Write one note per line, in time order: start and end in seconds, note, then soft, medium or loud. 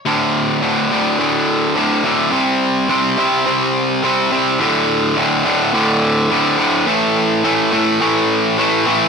0.05 0.60 D2 medium
0.05 0.61 A2 medium
0.05 0.62 D3 medium
0.62 0.90 D2 medium
0.62 0.90 A2 medium
0.62 0.91 D3 medium
0.91 1.18 D2 medium
0.91 1.18 A2 medium
0.91 1.18 D3 medium
1.19 1.75 D2 medium
1.19 1.75 A2 medium
1.19 1.76 D3 medium
1.76 2.03 D2 medium
1.76 2.03 A2 medium
1.76 2.04 D3 medium
2.05 2.31 D2 medium
2.05 2.31 A2 medium
2.05 2.32 D3 medium
2.32 2.88 C3 medium
2.32 2.89 G3 medium
2.32 2.89 C4 medium
2.89 3.17 C3 medium
2.89 3.17 G3 medium
2.89 3.18 C4 medium
3.18 3.45 C3 medium
3.18 3.46 G3 medium
3.18 3.45 C4 medium
3.46 4.02 C3 medium
3.46 4.03 G3 medium
3.46 4.03 C4 loud
4.03 4.31 C3 medium
4.03 4.31 G3 medium
4.03 4.31 C4 medium
4.32 4.59 C3 medium
4.32 4.59 G3 medium
4.32 4.59 C4 medium
4.60 5.15 D2 medium
4.60 5.16 A2 medium
4.60 5.16 D3 loud
5.16 5.44 D2 medium
5.16 5.44 A2 medium
5.16 5.44 D3 medium
5.45 5.72 D2 medium
5.45 5.73 A2 medium
5.45 5.73 D3 loud
5.74 6.29 D2 medium
5.74 6.30 A2 loud
5.74 6.30 D3 loud
6.31 6.57 D2 medium
6.31 6.58 A2 medium
6.31 6.58 D3 loud
6.59 6.86 D2 medium
6.59 6.85 A2 medium
6.59 6.86 D3 medium
6.87 7.43 A2 medium
6.87 7.43 E3 loud
6.87 7.43 A3 loud
7.44 7.71 A2 medium
7.44 7.72 E3 loud
7.44 7.72 A3 loud
7.72 8.00 A2 medium
7.72 8.00 E3 medium
7.72 8.00 A3 loud
8.01 8.57 A2 loud
8.01 8.58 E3 loud
8.01 8.58 A3 loud
8.58 8.85 A2 medium
8.58 8.86 E3 loud
8.58 8.86 A3 loud
8.86 9.08 A2 medium
8.86 9.08 E3 medium
8.86 9.08 A3 medium